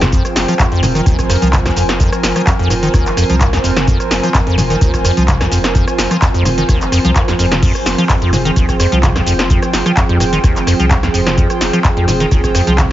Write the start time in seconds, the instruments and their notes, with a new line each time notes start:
Already playing: sub bass F1, ambient pad F3 C4 G#4, analog synth pad F4 C5 G5
0.01 acid bass F2, cross-stick, snare, closed hi-hat, mid tom, shaker
0.12 acid bass F2, ambient pad A#4, kick, closed hi-hat, shaker
0.25 cross-stick, closed hi-hat, shaker
0.36 sub bass F1, snare, open hi-hat, shaker
0.48 acid bass F3, cross-stick, closed hi-hat, shaker
0.59 acid bass F2, kick, clap, closed hi-hat, shaker
0.72 sub bass F1, acid bass F2, closed hi-hat
0.76 analog synth pad G#5
0.83 acid bass G#2, cross-stick, open hi-hat, mid tom, shaker
0.95 acid bass D#3, closed hi-hat, shaker
1.06 sub bass F1, acid bass D#2, kick, cross-stick, closed hi-hat, shaker
1.19 kick, cross-stick, closed hi-hat, shaker
1.30 acid bass F2, cross-stick, open hi-hat, shaker
1.42 sub bass C2, acid bass F3, closed hi-hat, shaker
1.53 acid bass F2, kick, clap, closed hi-hat, mid tom, shaker
1.66 acid bass F2, cross-stick, snare, closed hi-hat, shaker
1.76 sub bass F1, acid bass F2, open hi-hat, shaker
1.89 cross-stick, snare, closed hi-hat, shaker
2.00 acid bass F2, kick, closed hi-hat, shaker
2.12 cross-stick, closed hi-hat, shaker
2.23 sub bass F1, snare, open hi-hat, shaker
2.36 acid bass F3, cross-stick, closed hi-hat, shaker
2.47 acid bass F2, kick, clap, closed hi-hat, shaker
2.59 sub bass F1, acid bass F2, closed hi-hat
2.70 acid bass G#2, cross-stick, open hi-hat, shaker
2.83 acid bass D#3, closed hi-hat, shaker
2.94 sub bass F1, acid bass D#2, kick, cross-stick, closed hi-hat, shaker
3.06 clap, closed hi-hat, shaker
3.17 acid bass F2, cross-stick, open hi-hat, shaker
3.30 sub bass C2, acid bass F3, closed hi-hat, shaker
3.41 acid bass F2, kick, clap, closed hi-hat, shaker
3.53 acid bass F2, cross-stick, snare, closed hi-hat, shaker
3.64 sub bass F1, acid bass F2, open hi-hat, shaker
3.77 cross-stick, snare, closed hi-hat, mid tom, shaker
3.87 acid bass F2, kick, closed hi-hat, shaker
4.00 cross-stick, closed hi-hat, shaker
4.11 sub bass F1, snare, open hi-hat, shaker
4.23 acid bass F3, cross-stick, closed hi-hat, shaker
4.34 acid bass F2, kick, clap, closed hi-hat, shaker
4.47 sub bass F1, acid bass F2, closed hi-hat
4.58 acid bass G#2, cross-stick, open hi-hat, mid tom, shaker
4.70 acid bass D#3, closed hi-hat, shaker
4.81 sub bass F1, acid bass D#2, kick, cross-stick, closed hi-hat, shaker
4.94 kick, cross-stick, closed hi-hat, shaker
5.05 acid bass F2, cross-stick, open hi-hat, shaker
5.17 sub bass C2, acid bass F3, closed hi-hat, shaker
5.28 acid bass F2, kick, clap, closed hi-hat, mid tom, shaker
5.41 acid bass F2, cross-stick, snare, closed hi-hat, shaker
5.52 sub bass F1, acid bass F2, open hi-hat, shaker
5.64 cross-stick, snare, closed hi-hat, shaker
5.75 acid bass F2, kick, closed hi-hat, shaker
5.88 cross-stick, closed hi-hat, shaker
5.98 sub bass F1, snare, open hi-hat, shaker
6.11 acid bass F3, cross-stick, closed hi-hat, shaker
6.22 acid bass F2, kick, clap, closed hi-hat, shaker
6.34 sub bass F1, acid bass F2, closed hi-hat, shaker
6.45 acid bass G#2, cross-stick, open hi-hat, mid tom, shaker
6.58 acid bass D#3, closed hi-hat, shaker
6.69 sub bass F1, acid bass D#2, kick, cross-stick, closed hi-hat, shaker
6.81 clap, closed hi-hat, shaker
6.92 acid bass F2, cross-stick, open hi-hat, shaker
7.05 sub bass C2, acid bass F3, closed hi-hat, shaker
7.16 acid bass F2, kick, clap, closed hi-hat, shaker
7.28 acid bass F2, cross-stick, snare, closed hi-hat, shaker
7.39 sub bass F1, acid bass F2, open hi-hat, shaker
7.52 cross-stick, snare, closed hi-hat, mid tom, shaker
7.62 acid bass F2, ambient pad G#4, kick, closed hi-hat, crash, shaker
7.75 cross-stick, closed hi-hat, shaker
7.86 sub bass F1, snare, open hi-hat, shaker
7.98 acid bass F3, cross-stick, closed hi-hat, shaker
8.09 acid bass F2, kick, clap, closed hi-hat, shaker
8.22 sub bass F1, acid bass F2, closed hi-hat
8.26 analog synth pad G5
8.33 acid bass G#2, cross-stick, open hi-hat, mid tom, shaker
8.45 acid bass D#3, closed hi-hat, shaker
8.56 sub bass F1, acid bass D#2, kick, cross-stick, closed hi-hat, shaker
8.69 kick, cross-stick, closed hi-hat, shaker
8.80 acid bass F2, cross-stick, open hi-hat, shaker
8.92 sub bass C2, acid bass F3, closed hi-hat, shaker
9.03 acid bass F2, kick, clap, closed hi-hat, mid tom, shaker
9.16 acid bass F2, cross-stick, snare, closed hi-hat, shaker
9.27 sub bass F1, acid bass F2, open hi-hat, shaker
9.39 cross-stick, snare, closed hi-hat, shaker
9.50 acid bass F2, kick, closed hi-hat, shaker
9.62 cross-stick, closed hi-hat, shaker
9.73 sub bass F1, snare, open hi-hat, shaker
9.86 acid bass F3, cross-stick, closed hi-hat, shaker
9.97 acid bass F2, kick, clap, closed hi-hat, shaker
10.09 sub bass F1, acid bass F2, closed hi-hat
10.20 acid bass G#2, cross-stick, open hi-hat, shaker
10.33 acid bass D#3, closed hi-hat, shaker
10.44 sub bass F1, acid bass D#2, kick, cross-stick, closed hi-hat, shaker
10.56 clap, closed hi-hat, shaker
10.67 acid bass F2, cross-stick, open hi-hat, shaker
10.80 sub bass C2, acid bass F3, closed hi-hat, shaker
10.91 acid bass F2, kick, clap, closed hi-hat, shaker
11.03 acid bass F2, cross-stick, snare, closed hi-hat, shaker
11.14 sub bass F1, acid bass F2, open hi-hat, shaker
11.27 cross-stick, snare, closed hi-hat, mid tom, shaker
11.37 acid bass F2, kick, closed hi-hat, shaker
11.50 cross-stick, closed hi-hat, shaker
11.61 sub bass F1, snare, open hi-hat, shaker
11.73 acid bass F3, cross-stick, closed hi-hat, shaker
11.84 acid bass F2, kick, clap, closed hi-hat, shaker
11.97 sub bass F1, acid bass F2, closed hi-hat
12.08 acid bass G#2, cross-stick, open hi-hat, mid tom, shaker
12.20 acid bass D#3, closed hi-hat, shaker
12.31 sub bass F1, acid bass D#2, kick, cross-stick, closed hi-hat, shaker
12.44 kick, cross-stick, closed hi-hat, shaker
12.55 acid bass F2, cross-stick, open hi-hat, shaker
12.67 sub bass C2, acid bass F3, closed hi-hat, shaker
12.78 acid bass F2, kick, clap, closed hi-hat, mid tom, shaker